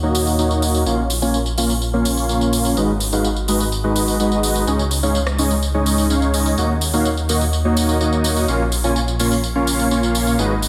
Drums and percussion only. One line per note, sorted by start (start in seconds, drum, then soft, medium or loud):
0.15 open hi-hat medium
0.15 tambourine medium
0.27 tambourine soft
0.39 tambourine soft
0.51 tambourine soft
0.62 open hi-hat medium
0.62 tambourine medium
0.75 tambourine soft
0.86 tambourine soft
1.10 open hi-hat medium
1.10 tambourine medium
1.22 tambourine soft
1.34 tambourine soft
1.46 tambourine soft
1.58 open hi-hat medium
1.58 tambourine medium
1.70 tambourine soft
1.82 tambourine soft
2.05 open hi-hat loud
2.05 tambourine medium
2.17 tambourine soft
2.29 tambourine soft
2.41 tambourine soft
2.53 open hi-hat loud
2.53 tambourine medium
2.65 tambourine soft
2.77 tambourine soft
3.00 open hi-hat loud
3.00 tambourine medium
3.13 tambourine soft
3.24 tambourine soft
3.36 tambourine soft
3.48 open hi-hat medium
3.48 tambourine medium
3.60 tambourine soft
3.72 tambourine soft
3.96 open hi-hat loud
3.96 tambourine medium
4.08 tambourine soft
4.20 tambourine soft
4.32 tambourine soft
4.43 open hi-hat loud
4.43 tambourine medium
4.55 tambourine soft
4.67 tambourine soft
4.79 tambourine soft
4.91 open hi-hat medium
4.91 tambourine medium
5.03 tambourine soft
5.15 tambourine soft
5.27 cross-stick medium
5.27 tambourine soft
5.39 open hi-hat medium
5.39 tambourine medium
5.51 tambourine soft
5.63 tambourine soft
5.86 open hi-hat medium
5.86 tambourine medium
5.98 tambourine soft
6.10 tambourine soft
6.22 tambourine soft
6.34 open hi-hat loud
6.34 tambourine medium
6.46 tambourine soft
6.58 tambourine soft
6.81 open hi-hat medium
6.81 tambourine medium
6.93 tambourine soft
7.05 tambourine soft
7.17 tambourine soft
7.29 open hi-hat medium
7.29 tambourine medium
7.41 tambourine soft
7.53 tambourine soft
7.77 open hi-hat medium
7.77 tambourine medium
7.89 tambourine soft
8.01 tambourine soft
8.13 tambourine soft
8.24 open hi-hat medium
8.24 tambourine medium
8.36 tambourine soft
8.48 tambourine soft
8.72 open hi-hat medium
8.72 tambourine medium
8.84 tambourine soft
8.96 tambourine soft
9.08 tambourine soft
9.20 open hi-hat medium
9.20 tambourine medium
9.32 tambourine soft
9.44 tambourine soft
9.67 open hi-hat loud
9.67 tambourine medium
9.79 tambourine soft
9.91 tambourine soft
10.03 tambourine soft
10.15 open hi-hat loud
10.15 tambourine medium
10.27 tambourine soft
10.39 tambourine soft
10.62 open hi-hat medium
10.62 tambourine medium